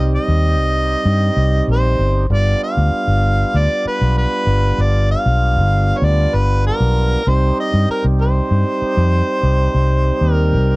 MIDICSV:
0, 0, Header, 1, 5, 480
1, 0, Start_track
1, 0, Key_signature, -3, "minor"
1, 0, Tempo, 620476
1, 1782, Time_signature, 4, 2, 24, 8
1, 8325, End_track
2, 0, Start_track
2, 0, Title_t, "Harmonica"
2, 0, Program_c, 0, 22
2, 119, Note_on_c, 0, 75, 102
2, 1280, Note_off_c, 0, 75, 0
2, 1323, Note_on_c, 0, 72, 90
2, 1761, Note_off_c, 0, 72, 0
2, 1800, Note_on_c, 0, 74, 86
2, 2015, Note_off_c, 0, 74, 0
2, 2039, Note_on_c, 0, 77, 96
2, 2764, Note_on_c, 0, 74, 91
2, 2776, Note_off_c, 0, 77, 0
2, 2994, Note_off_c, 0, 74, 0
2, 2997, Note_on_c, 0, 71, 87
2, 3214, Note_off_c, 0, 71, 0
2, 3232, Note_on_c, 0, 71, 84
2, 3722, Note_on_c, 0, 74, 85
2, 3733, Note_off_c, 0, 71, 0
2, 3949, Note_off_c, 0, 74, 0
2, 3953, Note_on_c, 0, 77, 97
2, 4620, Note_on_c, 0, 73, 65
2, 4632, Note_off_c, 0, 77, 0
2, 4677, Note_on_c, 0, 74, 92
2, 4689, Note_off_c, 0, 73, 0
2, 4912, Note_on_c, 0, 71, 84
2, 4924, Note_off_c, 0, 74, 0
2, 5148, Note_off_c, 0, 71, 0
2, 5160, Note_on_c, 0, 70, 77
2, 5634, Note_on_c, 0, 72, 91
2, 5646, Note_off_c, 0, 70, 0
2, 5868, Note_off_c, 0, 72, 0
2, 5880, Note_on_c, 0, 75, 88
2, 6095, Note_off_c, 0, 75, 0
2, 6118, Note_on_c, 0, 70, 79
2, 6222, Note_off_c, 0, 70, 0
2, 6358, Note_on_c, 0, 72, 95
2, 7998, Note_off_c, 0, 72, 0
2, 7998, Note_on_c, 0, 70, 95
2, 8325, Note_off_c, 0, 70, 0
2, 8325, End_track
3, 0, Start_track
3, 0, Title_t, "Tonewheel organ"
3, 0, Program_c, 1, 16
3, 0, Note_on_c, 1, 55, 60
3, 0, Note_on_c, 1, 60, 57
3, 0, Note_on_c, 1, 63, 54
3, 0, Note_on_c, 1, 67, 68
3, 1748, Note_off_c, 1, 55, 0
3, 1749, Note_off_c, 1, 60, 0
3, 1753, Note_off_c, 1, 63, 0
3, 1753, Note_off_c, 1, 67, 0
3, 1778, Note_on_c, 1, 55, 56
3, 1781, Note_on_c, 1, 59, 51
3, 1789, Note_on_c, 1, 62, 53
3, 1792, Note_on_c, 1, 65, 65
3, 5590, Note_off_c, 1, 55, 0
3, 5592, Note_off_c, 1, 59, 0
3, 5596, Note_off_c, 1, 62, 0
3, 5597, Note_off_c, 1, 65, 0
3, 5621, Note_on_c, 1, 55, 62
3, 5623, Note_on_c, 1, 60, 55
3, 5629, Note_on_c, 1, 63, 54
3, 5632, Note_on_c, 1, 67, 67
3, 8325, Note_off_c, 1, 55, 0
3, 8325, Note_off_c, 1, 60, 0
3, 8325, Note_off_c, 1, 63, 0
3, 8325, Note_off_c, 1, 67, 0
3, 8325, End_track
4, 0, Start_track
4, 0, Title_t, "Fingered electric bass"
4, 0, Program_c, 2, 33
4, 0, Note_on_c, 2, 36, 88
4, 128, Note_off_c, 2, 36, 0
4, 218, Note_on_c, 2, 39, 79
4, 458, Note_off_c, 2, 39, 0
4, 458, Note_on_c, 2, 36, 75
4, 729, Note_off_c, 2, 36, 0
4, 815, Note_on_c, 2, 43, 101
4, 998, Note_off_c, 2, 43, 0
4, 1057, Note_on_c, 2, 36, 86
4, 1239, Note_off_c, 2, 36, 0
4, 1299, Note_on_c, 2, 34, 77
4, 1516, Note_off_c, 2, 34, 0
4, 1539, Note_on_c, 2, 31, 84
4, 1756, Note_off_c, 2, 31, 0
4, 1778, Note_on_c, 2, 31, 98
4, 1960, Note_off_c, 2, 31, 0
4, 2144, Note_on_c, 2, 38, 79
4, 2233, Note_off_c, 2, 38, 0
4, 2379, Note_on_c, 2, 31, 77
4, 2651, Note_off_c, 2, 31, 0
4, 2741, Note_on_c, 2, 38, 89
4, 2834, Note_off_c, 2, 38, 0
4, 3105, Note_on_c, 2, 35, 75
4, 3286, Note_off_c, 2, 35, 0
4, 3456, Note_on_c, 2, 31, 86
4, 3639, Note_off_c, 2, 31, 0
4, 3700, Note_on_c, 2, 31, 94
4, 3974, Note_off_c, 2, 31, 0
4, 4068, Note_on_c, 2, 35, 88
4, 4303, Note_on_c, 2, 31, 76
4, 4315, Note_off_c, 2, 35, 0
4, 4573, Note_off_c, 2, 31, 0
4, 4656, Note_on_c, 2, 38, 105
4, 4839, Note_off_c, 2, 38, 0
4, 4904, Note_on_c, 2, 31, 82
4, 5177, Note_off_c, 2, 31, 0
4, 5263, Note_on_c, 2, 35, 79
4, 5533, Note_off_c, 2, 35, 0
4, 5623, Note_on_c, 2, 36, 93
4, 5804, Note_off_c, 2, 36, 0
4, 5985, Note_on_c, 2, 43, 91
4, 6073, Note_off_c, 2, 43, 0
4, 6223, Note_on_c, 2, 36, 88
4, 6493, Note_off_c, 2, 36, 0
4, 6583, Note_on_c, 2, 43, 92
4, 6675, Note_off_c, 2, 43, 0
4, 6940, Note_on_c, 2, 41, 83
4, 7123, Note_off_c, 2, 41, 0
4, 7296, Note_on_c, 2, 36, 85
4, 7479, Note_off_c, 2, 36, 0
4, 7539, Note_on_c, 2, 36, 91
4, 7813, Note_off_c, 2, 36, 0
4, 7900, Note_on_c, 2, 39, 82
4, 8144, Note_on_c, 2, 36, 68
4, 8155, Note_off_c, 2, 39, 0
4, 8325, Note_off_c, 2, 36, 0
4, 8325, End_track
5, 0, Start_track
5, 0, Title_t, "Muted fingered electric bass strokes"
5, 2980, Note_on_c, 9, 29, 33
5, 3057, Note_off_c, 9, 29, 0
5, 6101, Note_on_c, 9, 29, 32
5, 6179, Note_off_c, 9, 29, 0
5, 6822, Note_on_c, 9, 29, 35
5, 6899, Note_off_c, 9, 29, 0
5, 8325, End_track
0, 0, End_of_file